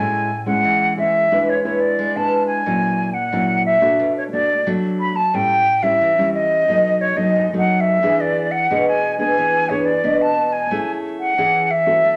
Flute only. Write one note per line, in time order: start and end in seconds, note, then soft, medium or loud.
0.00 0.46 G#5 medium
0.46 0.94 F#5 medium
0.98 1.51 E5 medium
1.50 1.63 C#5 medium
1.64 1.82 C#5 medium
1.80 2.18 D5 medium
2.16 2.46 A5 medium
2.47 3.15 G#5 medium
3.14 3.65 F#5 medium
3.66 4.13 E5 medium
4.18 4.24 C#5 medium
4.32 4.70 D5 medium
5.00 5.17 B5 medium
5.16 5.36 A5 medium
5.35 5.84 G5 medium
5.83 6.33 E5 medium
6.34 7.03 D#5 medium
7.01 7.18 C#5 medium
7.17 7.51 D#5 medium
7.58 7.82 F#5 medium
7.80 8.22 E5 medium
8.21 8.53 D5 medium
8.51 8.86 F#5 medium
8.88 9.18 G#5 medium
9.19 9.71 G#5 medium
9.69 9.87 C#5 medium
9.85 10.23 D5 medium
10.22 10.54 A5 medium
10.52 10.93 G#5 medium
11.19 11.72 F#5 medium
11.71 12.16 E5 medium